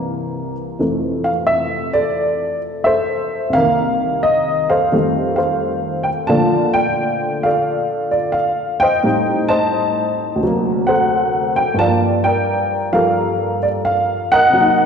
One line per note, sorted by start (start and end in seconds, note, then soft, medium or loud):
0.00 0.76 C2 medium
0.00 0.78 C3 medium
0.00 0.78 E3 medium
0.00 0.82 A#3 medium
0.00 0.53 D5 medium
0.00 0.52 A#5 loud
0.79 3.54 F2 soft
0.79 3.51 C3 soft
0.79 3.54 E3 soft
0.79 3.55 A3 medium
1.24 1.29 F5 medium
1.47 1.90 E5 medium
1.93 2.85 A4 medium
1.93 2.58 D5 medium
2.84 3.50 A4 medium
2.84 3.50 C5 medium
2.84 3.55 E5 medium
3.50 4.89 C2 medium
3.50 4.91 C3 soft
3.50 4.24 F5 loud
3.55 4.91 D#3 soft
3.55 4.88 A#4 medium
3.60 4.94 A#3 medium
4.23 4.70 D#5 medium
4.70 5.37 A4 medium
4.70 5.37 C5 medium
4.70 5.34 F5 medium
4.92 6.29 F2 soft
4.92 6.29 D#3 soft
4.92 6.30 G3 soft
4.92 6.28 A3 medium
5.36 6.25 A4 medium
5.36 6.25 C5 medium
5.36 6.07 F5 medium
6.03 6.09 G5 medium
6.27 9.04 A#2 medium
6.27 9.04 D3 medium
6.27 9.04 F3 medium
6.27 9.04 A3 medium
6.27 6.74 D5 medium
6.27 7.42 F5 medium
6.27 6.71 A5 medium
6.74 7.44 D5 medium
6.74 7.45 G5 medium
7.43 8.78 A4 medium
7.43 8.10 D5 medium
7.43 8.14 F5 medium
8.11 8.33 D5 medium
8.32 8.81 F5 medium
8.80 9.48 C5 medium
8.80 9.48 D#5 medium
8.80 9.51 G5 loud
9.03 10.41 A2 soft
9.03 10.41 G3 soft
9.03 10.42 C4 soft
9.03 10.42 D#4 medium
9.48 10.83 C5 medium
9.48 10.37 D#5 medium
9.48 10.91 A5 loud
10.36 11.76 D2 medium
10.36 11.78 C3 medium
10.43 11.80 F#3 medium
10.43 11.82 A#3 medium
10.87 11.75 A4 medium
10.87 11.75 C5 medium
10.87 11.52 F#5 medium
11.56 11.77 G5 medium
11.74 14.52 G2 medium
11.74 12.91 F3 soft
11.79 12.24 D5 medium
11.79 12.91 F5 medium
11.79 11.89 A5 loud
11.85 14.55 A#3 medium
12.24 12.93 A#4 medium
12.24 13.59 D5 medium
12.24 12.89 G5 medium
12.92 14.53 F3 soft
12.92 14.54 G3 soft
12.92 14.28 A4 medium
12.92 14.28 A#4 medium
12.92 13.64 F5 medium
13.63 13.68 D5 medium
13.85 14.32 F5 medium
14.32 14.86 A#4 medium
14.32 14.86 D#5 medium
14.32 14.86 F#5 loud
14.49 14.86 C3 medium
14.49 14.86 F#3 medium
14.57 14.86 A#3 soft
14.57 14.86 D#4 medium